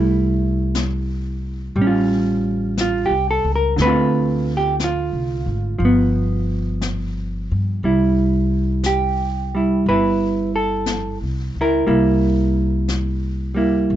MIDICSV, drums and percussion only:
0, 0, Header, 1, 2, 480
1, 0, Start_track
1, 0, Key_signature, 0, "major"
1, 0, Tempo, 1010101
1, 1795, Time_signature, 4, 2, 24, 8
1, 6635, End_track
2, 0, Start_track
2, 0, Title_t, "Drums"
2, 355, Note_on_c, 9, 25, 33
2, 355, Note_on_c, 9, 38, 44
2, 355, Note_on_c, 9, 44, 51
2, 403, Note_off_c, 9, 38, 0
2, 403, Note_off_c, 9, 44, 0
2, 841, Note_off_c, 9, 25, 0
2, 841, Note_on_c, 9, 25, 41
2, 1319, Note_off_c, 9, 25, 0
2, 1319, Note_on_c, 9, 25, 32
2, 1319, Note_on_c, 9, 38, 42
2, 1319, Note_on_c, 9, 44, 49
2, 1366, Note_off_c, 9, 38, 0
2, 1366, Note_off_c, 9, 44, 0
2, 1794, Note_off_c, 9, 25, 0
2, 1794, Note_on_c, 9, 25, 44
2, 1794, Note_on_c, 9, 38, 31
2, 1842, Note_off_c, 9, 38, 0
2, 2279, Note_off_c, 9, 25, 0
2, 2279, Note_on_c, 9, 25, 37
2, 2279, Note_on_c, 9, 38, 46
2, 2279, Note_on_c, 9, 44, 52
2, 2326, Note_off_c, 9, 38, 0
2, 2326, Note_off_c, 9, 44, 0
2, 2753, Note_off_c, 9, 25, 0
2, 2753, Note_on_c, 9, 25, 36
2, 3239, Note_off_c, 9, 25, 0
2, 3239, Note_on_c, 9, 25, 31
2, 3239, Note_on_c, 9, 38, 45
2, 3239, Note_on_c, 9, 44, 44
2, 3286, Note_off_c, 9, 38, 0
2, 3286, Note_off_c, 9, 44, 0
2, 3718, Note_off_c, 9, 25, 0
2, 3718, Note_on_c, 9, 25, 31
2, 4198, Note_off_c, 9, 25, 0
2, 4198, Note_on_c, 9, 25, 28
2, 4198, Note_on_c, 9, 38, 36
2, 4198, Note_on_c, 9, 44, 43
2, 4246, Note_off_c, 9, 38, 0
2, 4246, Note_off_c, 9, 44, 0
2, 4677, Note_off_c, 9, 25, 0
2, 4677, Note_on_c, 9, 25, 33
2, 5161, Note_off_c, 9, 25, 0
2, 5161, Note_on_c, 9, 25, 32
2, 5161, Note_on_c, 9, 38, 38
2, 5161, Note_on_c, 9, 44, 50
2, 5209, Note_off_c, 9, 38, 0
2, 5209, Note_off_c, 9, 44, 0
2, 5639, Note_off_c, 9, 25, 0
2, 5639, Note_on_c, 9, 25, 37
2, 6122, Note_off_c, 9, 25, 0
2, 6122, Note_on_c, 9, 25, 31
2, 6122, Note_on_c, 9, 38, 37
2, 6122, Note_on_c, 9, 44, 41
2, 6170, Note_off_c, 9, 38, 0
2, 6170, Note_off_c, 9, 44, 0
2, 6603, Note_off_c, 9, 25, 0
2, 6603, Note_on_c, 9, 25, 32
2, 6635, Note_off_c, 9, 25, 0
2, 6635, End_track
0, 0, End_of_file